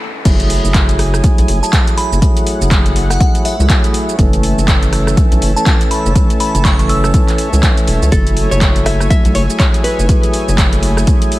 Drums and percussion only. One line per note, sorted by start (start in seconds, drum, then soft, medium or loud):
0.25 kick loud
0.25 closed hi-hat medium
0.25 crash loud
0.25 shaker medium
0.40 closed hi-hat medium
0.40 shaker soft
0.50 open hi-hat loud
0.65 shaker medium
0.74 kick loud
0.74 clap loud
0.74 closed hi-hat medium
0.74 shaker medium
0.89 closed hi-hat medium
0.89 shaker soft
0.99 cross-stick medium
0.99 open hi-hat loud
1.14 cross-stick medium
1.14 shaker medium
1.24 kick loud
1.24 closed hi-hat medium
1.24 shaker medium
1.38 closed hi-hat medium
1.38 shaker soft
1.48 open hi-hat loud
1.63 shaker medium
1.73 kick loud
1.73 clap loud
1.73 closed hi-hat medium
1.73 shaker medium
1.87 closed hi-hat medium
1.87 shaker soft
1.98 open hi-hat loud
2.13 shaker medium
2.22 kick loud
2.22 closed hi-hat medium
2.22 shaker medium
2.37 closed hi-hat medium
2.37 shaker soft
2.47 open hi-hat loud
2.62 shaker medium
2.71 kick loud
2.71 clap loud
2.71 closed hi-hat medium
2.71 shaker medium
2.86 closed hi-hat medium
2.86 shaker soft
2.96 open hi-hat loud
3.10 cross-stick medium
3.10 shaker medium
3.20 kick loud
3.20 closed hi-hat medium
3.20 shaker medium
3.35 closed hi-hat medium
3.35 shaker soft
3.45 open hi-hat loud
3.60 shaker medium
3.70 kick loud
3.70 clap loud
3.70 closed hi-hat medium
3.70 shaker medium
3.84 closed hi-hat medium
3.84 shaker soft
3.94 open hi-hat loud
4.09 shaker medium
4.19 kick loud
4.19 closed hi-hat medium
4.19 shaker medium
4.33 closed hi-hat medium
4.33 shaker soft
4.43 open hi-hat loud
4.59 shaker medium
4.68 kick loud
4.68 clap loud
4.68 closed hi-hat medium
4.68 shaker medium
4.83 closed hi-hat medium
4.83 shaker soft
4.93 cross-stick medium
4.93 open hi-hat loud
5.07 cross-stick medium
5.07 shaker medium
5.17 kick loud
5.17 closed hi-hat medium
5.17 shaker medium
5.32 closed hi-hat medium
5.32 shaker soft
5.42 open hi-hat loud
5.57 shaker medium
5.66 kick loud
5.66 clap loud
5.66 closed hi-hat medium
5.66 shaker medium
5.81 closed hi-hat soft
5.81 shaker soft
5.91 open hi-hat loud
6.06 shaker medium
6.16 kick loud
6.16 closed hi-hat medium
6.16 shaker medium
6.30 closed hi-hat medium
6.30 shaker soft
6.40 open hi-hat loud
6.55 closed hi-hat soft
6.55 shaker medium
6.65 kick loud
6.65 clap loud
6.65 closed hi-hat medium
6.65 shaker medium
6.79 closed hi-hat soft
6.79 shaker soft
6.89 open hi-hat loud
7.04 cross-stick medium
7.04 shaker medium
7.14 kick loud
7.14 closed hi-hat medium
7.14 shaker medium
7.28 clap soft
7.28 closed hi-hat medium
7.28 shaker soft
7.38 open hi-hat loud
7.54 shaker medium
7.63 kick loud
7.63 clap loud
7.63 closed hi-hat medium
7.63 shaker medium
7.78 closed hi-hat soft
7.78 shaker soft
7.88 open hi-hat loud
8.03 shaker medium
8.12 kick loud
8.12 closed hi-hat medium
8.12 shaker medium
8.27 closed hi-hat medium
8.27 shaker soft
8.37 open hi-hat loud
8.52 shaker medium
8.61 kick loud
8.61 clap loud
8.61 closed hi-hat medium
8.61 shaker medium
8.76 closed hi-hat soft
8.76 shaker soft
8.86 cross-stick medium
8.86 open hi-hat loud
9.00 cross-stick medium
9.00 shaker medium
9.11 kick loud
9.11 closed hi-hat medium
9.11 shaker medium
9.25 closed hi-hat medium
9.25 shaker soft
9.35 open hi-hat loud
9.50 shaker medium
9.60 kick loud
9.60 clap loud
9.60 closed hi-hat medium
9.60 shaker medium
9.74 closed hi-hat soft
9.74 shaker soft
9.84 open hi-hat loud
10.00 shaker medium
10.09 kick loud
10.09 closed hi-hat medium
10.09 shaker medium
10.23 closed hi-hat medium
10.23 shaker soft
10.33 open hi-hat loud
10.49 shaker medium
10.58 kick loud
10.58 clap loud
10.58 closed hi-hat medium
10.58 shaker medium
10.73 closed hi-hat medium
10.73 shaker soft
10.83 open hi-hat loud
10.97 cross-stick medium
10.97 shaker medium
11.07 kick loud
11.07 closed hi-hat medium
11.07 shaker medium
11.22 closed hi-hat medium
11.22 shaker soft
11.32 open hi-hat loud